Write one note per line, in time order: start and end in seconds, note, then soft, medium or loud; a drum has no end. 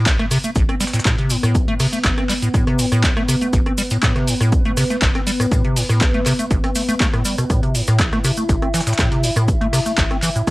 0.00 7.51 B3 medium
0.00 7.51 B4 medium
0.06 0.17 A1 medium
0.06 kick loud
0.06 snare loud
0.06 clap loud
0.06 closed hi-hat medium
0.06 cabasa soft
0.06 shaker medium
0.19 0.26 A3 loud
0.19 cross-stick medium
0.19 snare soft
0.19 closed hi-hat soft
0.31 0.38 C3 medium
0.31 cross-stick medium
0.31 open hi-hat medium
0.31 cabasa medium
0.31 shaker medium
0.44 0.50 A3 medium
0.44 closed hi-hat medium
0.44 cabasa medium
0.55 0.63 A1 loud
0.55 kick loud
0.55 closed hi-hat medium
0.55 cabasa soft
0.55 shaker medium
0.69 0.75 C4 medium
0.69 cross-stick medium
0.69 closed hi-hat soft
0.80 0.85 G3 loud
0.80 snare medium
0.80 open hi-hat loud
0.80 cabasa medium
0.80 shaker medium
0.87 snare medium
0.87 shaker medium
0.93 1.00 A2 medium
0.93 snare medium
0.93 closed hi-hat medium
0.93 cabasa medium
0.93 shaker medium
0.99 snare medium
0.99 shaker medium
1.05 1.16 A2 medium
1.05 kick loud
1.05 cross-stick medium
1.05 snare loud
1.05 clap loud
1.05 closed hi-hat medium
1.05 cabasa soft
1.05 shaker medium
1.18 1.32 C3 medium
1.18 closed hi-hat soft
1.30 1.37 A2 loud
1.30 open hi-hat medium
1.30 cabasa medium
1.30 shaker medium
1.43 1.56 A2 loud
1.43 cross-stick medium
1.43 cabasa medium
1.55 1.66 A1 medium
1.55 kick loud
1.55 closed hi-hat medium
1.55 cabasa soft
1.55 shaker medium
1.68 1.74 A3 loud
1.68 closed hi-hat soft
1.80 1.87 C3 loud
1.80 cross-stick medium
1.80 open hi-hat medium
1.80 open hi-hat loud
1.80 cabasa medium
1.93 1.99 A3 medium
1.93 closed hi-hat soft
1.93 cabasa medium
2.04 2.12 A1 loud
2.04 kick loud
2.04 snare loud
2.04 clap loud
2.04 closed hi-hat medium
2.04 cabasa soft
2.04 shaker medium
2.18 2.24 C4 medium
2.18 cross-stick medium
2.18 closed hi-hat soft
2.29 2.34 G3 loud
2.29 clap soft
2.29 open hi-hat medium
2.29 cabasa medium
2.29 shaker medium
2.42 2.49 A2 medium
2.42 closed hi-hat medium
2.42 cabasa medium
2.54 2.65 A2 medium
2.54 kick loud
2.54 cross-stick medium
2.54 closed hi-hat medium
2.54 cabasa soft
2.54 shaker medium
2.67 2.80 C3 medium
2.67 cross-stick medium
2.67 closed hi-hat soft
2.79 2.86 A2 loud
2.79 open hi-hat loud
2.79 cabasa medium
2.79 shaker medium
2.92 3.05 A2 loud
2.92 cross-stick medium
2.92 closed hi-hat medium
2.92 cabasa medium
3.04 3.14 A1 medium
3.04 kick loud
3.04 snare loud
3.04 clap loud
3.04 closed hi-hat medium
3.04 cabasa soft
3.04 shaker medium
3.17 3.23 A3 loud
3.17 cross-stick medium
3.17 closed hi-hat soft
3.28 3.36 C3 loud
3.28 cross-stick medium
3.28 open hi-hat medium
3.28 cabasa medium
3.28 shaker medium
3.41 3.48 A3 medium
3.41 closed hi-hat medium
3.41 cabasa medium
3.53 3.60 A1 loud
3.53 kick loud
3.53 closed hi-hat medium
3.53 cabasa soft
3.53 shaker medium
3.66 3.73 C4 medium
3.66 cross-stick medium
3.66 closed hi-hat soft
3.78 3.82 G3 loud
3.78 open hi-hat loud
3.78 cabasa loud
3.78 shaker medium
3.90 3.97 A2 medium
3.90 closed hi-hat soft
3.90 cabasa medium
4.03 4.14 A2 medium
4.03 kick loud
4.03 cross-stick medium
4.03 snare loud
4.03 clap loud
4.03 closed hi-hat medium
4.03 cabasa soft
4.03 shaker medium
4.16 4.29 C3 medium
4.16 cross-stick medium
4.16 snare soft
4.16 closed hi-hat soft
4.28 4.35 A2 loud
4.28 open hi-hat medium
4.28 cabasa medium
4.28 shaker medium
4.41 4.54 A2 loud
4.41 cross-stick medium
4.41 closed hi-hat medium
4.41 cabasa medium
4.52 4.63 A1 medium
4.52 kick loud
4.52 closed hi-hat medium
4.52 cabasa soft
4.52 shaker medium
4.65 4.72 A3 loud
4.65 closed hi-hat soft
4.77 4.84 C3 loud
4.77 cross-stick medium
4.77 snare soft
4.77 open hi-hat loud
4.77 cabasa medium
4.77 shaker medium
4.90 4.97 A3 medium
4.90 snare soft
4.90 closed hi-hat medium
4.90 cabasa soft
5.01 5.09 A1 loud
5.01 kick loud
5.01 snare loud
5.01 clap loud
5.01 closed hi-hat medium
5.01 cabasa soft
5.01 shaker medium
5.15 5.21 C4 medium
5.15 cross-stick medium
5.15 closed hi-hat soft
5.27 5.31 G3 loud
5.27 open hi-hat medium
5.27 cabasa medium
5.27 shaker medium
5.40 5.46 A2 medium
5.40 cross-stick medium
5.40 closed hi-hat medium
5.40 cabasa medium
5.52 5.62 A2 medium
5.52 kick loud
5.52 cross-stick medium
5.52 closed hi-hat medium
5.52 cabasa soft
5.52 shaker medium
5.65 5.78 C3 medium
5.65 closed hi-hat soft
5.76 5.83 A2 loud
5.76 open hi-hat loud
5.76 open hi-hat medium
5.76 cabasa medium
5.89 6.03 A2 loud
5.89 cross-stick medium
5.89 closed hi-hat soft
5.89 cabasa soft
6.00 6.12 A1 medium
6.00 kick loud
6.00 snare loud
6.00 clap loud
6.00 closed hi-hat medium
6.00 cabasa soft
6.00 shaker medium
6.14 6.21 A3 loud
6.14 closed hi-hat soft
6.26 6.33 C3 loud
6.26 cross-stick medium
6.26 clap soft
6.26 open hi-hat medium
6.26 cabasa medium
6.26 shaker medium
6.39 6.45 A3 medium
6.39 closed hi-hat soft
6.39 cabasa medium
6.51 6.58 A1 loud
6.51 kick loud
6.51 closed hi-hat medium
6.51 cabasa soft
6.51 shaker medium
6.64 6.70 C4 medium
6.64 cross-stick medium
6.64 closed hi-hat soft
6.75 6.83 A3 medium
6.75 open hi-hat loud
6.75 cabasa loud
6.75 shaker medium
6.88 6.95 A3 loud
6.88 closed hi-hat soft
6.88 cabasa medium
7.00 7.07 A3 loud
7.00 kick loud
7.00 cross-stick medium
7.00 snare loud
7.00 clap loud
7.00 closed hi-hat medium
7.00 cabasa soft
7.00 shaker medium
7.13 7.23 A2 medium
7.13 cross-stick medium
7.13 closed hi-hat soft
7.25 7.36 G3 medium
7.25 open hi-hat medium
7.25 cabasa medium
7.25 shaker medium
7.38 7.44 B2 medium
7.38 cross-stick medium
7.38 closed hi-hat soft
7.38 cabasa soft
7.50 7.61 A2 medium
7.50 10.51 E4 medium
7.50 10.51 E5 medium
7.50 kick loud
7.50 cross-stick medium
7.50 closed hi-hat medium
7.50 cabasa soft
7.50 shaker medium
7.63 7.76 C3 medium
7.63 closed hi-hat soft
7.74 7.82 A2 loud
7.74 open hi-hat loud
7.74 cabasa medium
7.74 shaker medium
7.87 8.01 A2 loud
7.87 cross-stick medium
7.87 closed hi-hat soft
7.87 cabasa medium
7.99 8.10 A1 medium
7.99 kick loud
7.99 snare loud
7.99 clap loud
7.99 closed hi-hat medium
7.99 cabasa soft
7.99 shaker medium
8.12 8.19 A3 loud
8.12 cross-stick medium
8.12 snare soft
8.12 closed hi-hat soft
8.24 8.31 C3 loud
8.24 cross-stick medium
8.24 open hi-hat medium
8.24 cabasa medium
8.24 shaker medium
8.37 8.44 A3 medium
8.37 closed hi-hat soft
8.37 cabasa medium
8.49 8.56 A1 loud
8.49 kick loud
8.49 closed hi-hat medium
8.49 cabasa soft
8.49 shaker medium
8.62 8.68 C4 medium
8.62 cross-stick medium
8.62 closed hi-hat soft
8.74 8.81 E3 loud
8.74 snare medium
8.74 open hi-hat loud
8.74 cabasa loud
8.74 shaker medium
8.80 snare medium
8.80 shaker medium
8.87 8.93 A2 medium
8.87 snare medium
8.87 closed hi-hat soft
8.87 cabasa medium
8.87 shaker medium
8.93 snare medium
8.93 shaker medium
8.98 9.09 A2 medium
8.98 kick loud
8.98 cross-stick medium
8.98 snare loud
8.98 clap loud
8.98 closed hi-hat medium
8.98 cabasa soft
9.11 9.25 C3 medium
9.11 closed hi-hat soft
9.23 9.30 A2 loud
9.23 open hi-hat medium
9.23 cabasa medium
9.23 shaker medium
9.36 9.49 A2 loud
9.36 cross-stick medium
9.36 closed hi-hat soft
9.36 cabasa soft
9.48 9.59 A1 medium
9.48 kick loud
9.48 closed hi-hat medium
9.48 cabasa soft
9.48 shaker medium
9.61 9.68 A3 loud
9.61 closed hi-hat soft
9.73 9.80 C3 loud
9.73 cross-stick medium
9.73 open hi-hat loud
9.73 open hi-hat medium
9.73 cabasa medium
9.86 9.92 A3 medium
9.86 closed hi-hat medium
9.86 cabasa medium
9.98 10.05 A1 loud
9.98 kick loud
9.98 snare loud
9.98 clap loud
9.98 closed hi-hat medium
9.98 cabasa soft
9.98 shaker medium
10.11 10.17 C4 medium
10.11 cross-stick medium
10.11 closed hi-hat soft
10.22 10.30 E3 loud
10.22 clap soft
10.22 open hi-hat medium
10.22 cabasa medium
10.22 shaker medium
10.36 10.42 A2 medium
10.36 closed hi-hat medium
10.36 cabasa soft
10.47 10.51 A2 medium
10.47 kick loud
10.47 cross-stick medium
10.47 closed hi-hat medium
10.47 cabasa soft
10.47 shaker medium